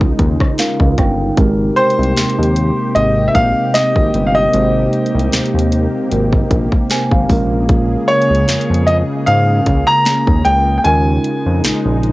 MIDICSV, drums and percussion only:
0, 0, Header, 1, 2, 480
1, 0, Start_track
1, 0, Key_signature, -4, "major"
1, 0, Tempo, 789474
1, 837, Time_signature, 4, 2, 24, 8
1, 7370, End_track
2, 0, Start_track
2, 0, Title_t, "Drums"
2, 6, Note_on_c, 9, 36, 92
2, 67, Note_off_c, 9, 36, 0
2, 116, Note_on_c, 9, 36, 89
2, 116, Note_on_c, 9, 42, 70
2, 177, Note_off_c, 9, 36, 0
2, 177, Note_off_c, 9, 42, 0
2, 246, Note_on_c, 9, 36, 93
2, 251, Note_on_c, 9, 37, 100
2, 307, Note_off_c, 9, 36, 0
2, 312, Note_off_c, 9, 37, 0
2, 353, Note_on_c, 9, 42, 59
2, 358, Note_on_c, 9, 38, 100
2, 414, Note_off_c, 9, 42, 0
2, 419, Note_off_c, 9, 38, 0
2, 486, Note_on_c, 9, 36, 99
2, 547, Note_off_c, 9, 36, 0
2, 596, Note_on_c, 9, 36, 84
2, 596, Note_on_c, 9, 42, 74
2, 600, Note_on_c, 9, 37, 69
2, 656, Note_off_c, 9, 42, 0
2, 657, Note_off_c, 9, 36, 0
2, 661, Note_off_c, 9, 37, 0
2, 835, Note_on_c, 9, 42, 78
2, 836, Note_on_c, 9, 36, 127
2, 896, Note_off_c, 9, 42, 0
2, 897, Note_off_c, 9, 36, 0
2, 1076, Note_on_c, 9, 42, 43
2, 1137, Note_off_c, 9, 42, 0
2, 1157, Note_on_c, 9, 42, 51
2, 1218, Note_off_c, 9, 42, 0
2, 1236, Note_on_c, 9, 42, 57
2, 1297, Note_off_c, 9, 42, 0
2, 1316, Note_on_c, 9, 42, 60
2, 1321, Note_on_c, 9, 38, 104
2, 1377, Note_off_c, 9, 42, 0
2, 1382, Note_off_c, 9, 38, 0
2, 1396, Note_on_c, 9, 42, 64
2, 1457, Note_off_c, 9, 42, 0
2, 1477, Note_on_c, 9, 42, 74
2, 1537, Note_off_c, 9, 42, 0
2, 1557, Note_on_c, 9, 42, 80
2, 1618, Note_off_c, 9, 42, 0
2, 1798, Note_on_c, 9, 42, 80
2, 1859, Note_off_c, 9, 42, 0
2, 2036, Note_on_c, 9, 36, 86
2, 2036, Note_on_c, 9, 42, 76
2, 2097, Note_off_c, 9, 36, 0
2, 2097, Note_off_c, 9, 42, 0
2, 2274, Note_on_c, 9, 42, 61
2, 2280, Note_on_c, 9, 38, 105
2, 2335, Note_off_c, 9, 42, 0
2, 2341, Note_off_c, 9, 38, 0
2, 2406, Note_on_c, 9, 36, 100
2, 2467, Note_off_c, 9, 36, 0
2, 2517, Note_on_c, 9, 42, 71
2, 2578, Note_off_c, 9, 42, 0
2, 2757, Note_on_c, 9, 42, 77
2, 2818, Note_off_c, 9, 42, 0
2, 2997, Note_on_c, 9, 42, 43
2, 3058, Note_off_c, 9, 42, 0
2, 3077, Note_on_c, 9, 42, 49
2, 3138, Note_off_c, 9, 42, 0
2, 3158, Note_on_c, 9, 42, 55
2, 3218, Note_off_c, 9, 42, 0
2, 3237, Note_on_c, 9, 42, 61
2, 3242, Note_on_c, 9, 38, 106
2, 3298, Note_off_c, 9, 42, 0
2, 3303, Note_off_c, 9, 38, 0
2, 3318, Note_on_c, 9, 42, 64
2, 3378, Note_off_c, 9, 42, 0
2, 3397, Note_on_c, 9, 42, 78
2, 3458, Note_off_c, 9, 42, 0
2, 3479, Note_on_c, 9, 42, 78
2, 3539, Note_off_c, 9, 42, 0
2, 3718, Note_on_c, 9, 42, 81
2, 3779, Note_off_c, 9, 42, 0
2, 3846, Note_on_c, 9, 36, 94
2, 3907, Note_off_c, 9, 36, 0
2, 3956, Note_on_c, 9, 36, 90
2, 3956, Note_on_c, 9, 42, 77
2, 4017, Note_off_c, 9, 36, 0
2, 4017, Note_off_c, 9, 42, 0
2, 4086, Note_on_c, 9, 36, 95
2, 4147, Note_off_c, 9, 36, 0
2, 4194, Note_on_c, 9, 42, 57
2, 4199, Note_on_c, 9, 38, 99
2, 4255, Note_off_c, 9, 42, 0
2, 4260, Note_off_c, 9, 38, 0
2, 4326, Note_on_c, 9, 36, 98
2, 4387, Note_off_c, 9, 36, 0
2, 4435, Note_on_c, 9, 46, 73
2, 4436, Note_on_c, 9, 36, 91
2, 4496, Note_off_c, 9, 46, 0
2, 4497, Note_off_c, 9, 36, 0
2, 4675, Note_on_c, 9, 42, 80
2, 4676, Note_on_c, 9, 36, 125
2, 4736, Note_off_c, 9, 42, 0
2, 4737, Note_off_c, 9, 36, 0
2, 4916, Note_on_c, 9, 42, 41
2, 4976, Note_off_c, 9, 42, 0
2, 4996, Note_on_c, 9, 42, 49
2, 5057, Note_off_c, 9, 42, 0
2, 5076, Note_on_c, 9, 42, 56
2, 5136, Note_off_c, 9, 42, 0
2, 5155, Note_on_c, 9, 42, 60
2, 5160, Note_on_c, 9, 38, 105
2, 5216, Note_off_c, 9, 42, 0
2, 5221, Note_off_c, 9, 38, 0
2, 5236, Note_on_c, 9, 42, 68
2, 5297, Note_off_c, 9, 42, 0
2, 5315, Note_on_c, 9, 42, 75
2, 5376, Note_off_c, 9, 42, 0
2, 5396, Note_on_c, 9, 42, 76
2, 5457, Note_off_c, 9, 42, 0
2, 5637, Note_on_c, 9, 42, 79
2, 5697, Note_off_c, 9, 42, 0
2, 5874, Note_on_c, 9, 42, 73
2, 5876, Note_on_c, 9, 36, 88
2, 5935, Note_off_c, 9, 42, 0
2, 5937, Note_off_c, 9, 36, 0
2, 6112, Note_on_c, 9, 42, 56
2, 6118, Note_on_c, 9, 38, 101
2, 6173, Note_off_c, 9, 42, 0
2, 6178, Note_off_c, 9, 38, 0
2, 6246, Note_on_c, 9, 36, 94
2, 6306, Note_off_c, 9, 36, 0
2, 6355, Note_on_c, 9, 42, 69
2, 6416, Note_off_c, 9, 42, 0
2, 6595, Note_on_c, 9, 42, 76
2, 6656, Note_off_c, 9, 42, 0
2, 6836, Note_on_c, 9, 42, 66
2, 6896, Note_off_c, 9, 42, 0
2, 7077, Note_on_c, 9, 42, 74
2, 7080, Note_on_c, 9, 38, 112
2, 7137, Note_off_c, 9, 42, 0
2, 7141, Note_off_c, 9, 38, 0
2, 7317, Note_on_c, 9, 42, 48
2, 7370, Note_off_c, 9, 42, 0
2, 7370, End_track
0, 0, End_of_file